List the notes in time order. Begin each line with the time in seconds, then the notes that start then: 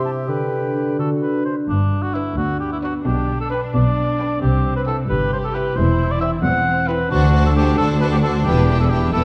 Already playing: C3 G3 G4 E5
0.05 E4 G4 A5
0.27 D3 B4 G5
0.52 D4
0.75 D4 G4
0.98 D3 F#4 A4
1.22 D4 B4
1.45 D4 F#4 C5
1.67 G1 G2 D4
1.91 D3
2.03 F#4
2.14 B3 D4 E4 B4 D5
2.36 D2 B3 D4 F#4
2.59 G4
2.73 E4
2.82 D4 F#4 B4 D5
3.04 B1 B2 D4 G4
3.27 G3
3.41 A4
3.51 B3 D4 B4 G5
3.73 B1 B2 D4 D5
3.96 G4
4.18 D4 B4 G5
4.40 C2 C3 C4 G4
4.65 G3
4.76 B4
4.87 B3 E4 A4 B4 G5
5.08 G1 G2 E4 G4 B4
5.32 G4 C5
5.44 A4
5.54 E4 B4 G5
5.76 E1 E2 E3 E4 C5
5.99 C4
6.11 D5
6.20 E4 C5 E5 G5
6.43 E1 E2 C4 G4 F#5
6.67 C5
6.88 E4 G4 B4 C5 G5
7.11 D2 D3 D4 F#4 C5 A5
7.34 A3 F#4 C5 A5
7.46 A4
7.56 C4 F#4 G4 C5 A5
7.78 D2 F#4 A4 C5 A5
8.00 F#4 A4 B4 C5 A5
8.12 G4
8.22 F#4 A4 C5 A5
8.45 E1 E2 E3 E4 G4 B4 G5
8.68 B3 E4 B4 G5
8.80 A4
8.90 E4 G4 B4 G5
9.12 E1 E2 B3 E4 G4 A4 B4 G5